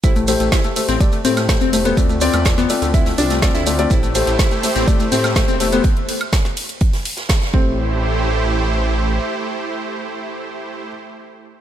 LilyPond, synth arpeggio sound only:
\new Staff \with { instrumentName = "Synth arpeggio sound" } { \time 4/4 \key a \minor \tempo 4 = 124 e'16 a16 a16 a16 e'16 a16 a16 c'16 a16 a16 c'16 a16 a16 c'16 a16 b16 | a16 a16 c'16 a16 a16 b16 a16 a16 e'16 a16 d'16 a16 a16 e'16 a16 a16 | e'16 a16 a16 a16 e'16 a16 a16 c'16 a16 a16 c'16 a16 a16 c'16 a16 b16 | r2. r8 c'8~ |
c'1~ | c'1 | }